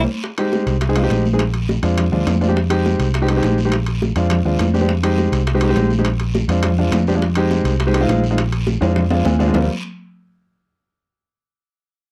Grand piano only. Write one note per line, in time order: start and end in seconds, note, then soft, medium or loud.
0.38 0.74 G#3 medium
0.38 0.74 C4 medium
0.38 0.74 D#4 medium
0.38 0.74 G4 loud
0.89 0.94 G#3 medium
0.89 0.94 C4 medium
0.89 0.94 D#4 medium
0.89 0.94 G#4 loud
0.96 1.01 G#3 medium
0.96 1.01 C4 medium
0.96 1.01 D#4 medium
0.96 1.01 F4 loud
1.03 1.24 G#3 loud
1.03 1.24 C4 medium
1.03 1.24 D#4 medium
1.03 1.24 G4 loud
1.33 1.40 G#3 medium
1.33 1.40 C4 medium
1.33 1.40 D#4 medium
1.33 1.40 G#4 loud
1.83 2.03 G#3 medium
1.83 2.04 C4 medium
1.83 2.04 D4 medium
1.83 2.04 F4 medium
2.12 2.33 G#3 medium
2.12 2.33 C4 medium
2.12 2.33 D4 medium
2.12 2.33 F4 medium
2.41 2.46 G#3 medium
2.41 2.46 C4 medium
2.41 2.47 D4 medium
2.41 2.47 F4 medium
2.48 2.56 G#3 medium
2.48 2.56 C4 medium
2.48 2.56 D4 medium
2.48 2.56 G4 medium
2.70 3.06 G#3 loud
2.70 3.06 C4 medium
2.70 3.06 D#4 medium
2.70 3.06 G4 loud
3.22 3.27 G#3 medium
3.22 3.27 C4 medium
3.22 3.27 D#4 medium
3.22 3.27 G4 loud
3.29 3.34 G#3 medium
3.29 3.34 C4 medium
3.29 3.34 D#4 medium
3.29 3.34 G4 medium
3.36 3.57 G#3 loud
3.36 3.57 C4 medium
3.36 3.57 D#4 medium
3.36 3.57 G4 loud
3.65 3.73 G#3 medium
3.65 3.73 C4 medium
3.65 3.73 D#4 medium
3.65 3.73 G4 medium
4.16 4.37 G#3 medium
4.16 4.37 C4 medium
4.16 4.37 D4 medium
4.16 4.37 F4 medium
4.45 4.66 G#3 medium
4.45 4.66 C4 medium
4.45 4.66 D4 medium
4.45 4.66 F4 medium
4.74 4.79 G#3 medium
4.74 4.79 C4 medium
4.74 4.79 D4 medium
4.74 4.79 G4 medium
4.81 4.89 G#3 medium
4.81 4.89 C4 medium
4.81 4.89 D4 medium
4.81 4.89 G4 medium
5.03 5.39 G#3 loud
5.03 5.39 C4 medium
5.03 5.39 D#4 medium
5.03 5.39 G4 loud
5.54 5.60 G#3 loud
5.54 5.60 C4 medium
5.54 5.60 D#4 medium
5.54 5.60 G4 loud
5.62 5.67 G#3 medium
5.62 5.67 C4 medium
5.62 5.67 D#4 medium
5.62 5.67 G4 loud
5.69 5.89 G#3 loud
5.69 5.90 C4 medium
5.69 5.90 D#4 medium
5.69 5.90 G4 loud
5.99 6.06 G#3 medium
5.99 6.06 C4 medium
5.99 6.06 D#4 medium
5.99 6.06 G4 medium
6.49 6.70 G#3 medium
6.49 6.70 C4 medium
6.49 6.70 D4 medium
6.49 6.70 F4 medium
6.78 6.99 G#3 medium
6.78 6.99 C4 medium
6.78 6.99 D4 medium
6.78 6.99 F4 medium
7.08 7.13 G#3 medium
7.08 7.13 C4 medium
7.08 7.13 D4 medium
7.08 7.13 G4 loud
7.15 7.22 G#3 medium
7.15 7.22 C4 medium
7.15 7.22 D4 medium
7.15 7.22 F4 medium
7.36 7.72 G#3 loud
7.36 7.72 C4 medium
7.36 7.72 D#4 medium
7.36 7.72 G4 loud
7.87 7.92 G#3 loud
7.87 7.92 C4 loud
7.87 7.92 D#4 medium
7.87 7.92 G4 loud
7.94 7.99 G#3 medium
7.94 7.99 C4 medium
7.94 8.00 D#4 medium
7.94 8.00 G4 loud
8.01 8.22 G#3 loud
8.01 8.22 C4 medium
8.01 8.22 D#4 loud
8.01 8.22 F4 loud
8.31 8.38 G#3 medium
8.31 8.38 C4 medium
8.31 8.38 D#4 medium
8.31 8.38 F4 loud
8.81 9.02 G#3 medium
8.81 9.02 C4 medium
8.81 9.02 D4 medium
8.81 9.02 F4 medium
9.10 9.31 G#3 medium
9.10 9.31 C4 medium
9.10 9.31 D4 medium
9.10 9.32 F4 loud
9.10 9.24 F5 medium
9.25 9.52 G#5 medium
9.39 9.45 G#3 medium
9.39 9.45 C4 medium
9.39 9.45 D4 medium
9.39 9.45 F4 medium
9.48 9.55 G#3 medium
9.48 9.53 C4 medium
9.48 9.55 D4 medium
9.48 9.53 F4 loud
9.54 9.68 G3 medium
9.54 9.68 A#3 medium
9.54 9.68 C4 medium
9.54 9.68 F4 medium